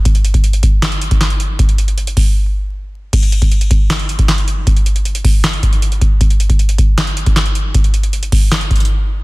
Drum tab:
CC |--------------------------------|--------------------------------|x-------------------------------|--------------------------------|
HH |x-x-x-x-x-x-x---x-x-x-x-x-x-x---|x-x-x-x-x-x-o-------------------|x-x-x-x-x-x-x---x-x-x-x-x-x-x---|x-x-x-x-x-x-o---x-x-x-x-x-x-x---|
CP |----------------x-------x-------|--------------------------------|----------------x-------x-------|----------------x---------------|
SD |----------------o-------o-------|--------------------------------|----------------o-------o-------|----------------o---------------|
BD |o-----o-----o---------o---------|o-----------o-------------------|o-----o-----o---------o---------|o-----------o-------o-------o---|

CC |--------------------------------|--------------------------------|
HH |x-x-x-x-x-x-x---x-x-x-x-x-x-x---|x-x-x-x-x-x-o---x-x-xxxx--------|
CP |----------------x-------x-------|----------------x---------------|
SD |----------------o-------o-------|----------------o---------------|
BD |o-----o-----o---------o---------|o-----------o-------o-----------|